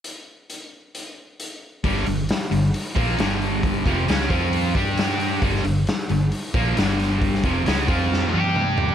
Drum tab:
HH |x---x---x---x---|o-o-o-o-o-o-o-o-|o-o-o-o-o-o-o-o-|o-o-o-o-o-o-o-o-|
SD |----------------|-o--o-------o---|----o-------o-o-|-o--o-------o-o-|
T1 |----------------|----------------|----------------|----------------|
T2 |----------------|----------------|----------------|----------------|
FT |----------------|----------------|----------------|----------------|
BD |----------------|o---------o-----|o-o---o---o-----|o---------o-----|

HH |o-o-o-o---------|
SD |-o--o---o-------|
T1 |----------oo----|
T2 |------------o---|
FT |--------------oo|
BD |o-o---o---------|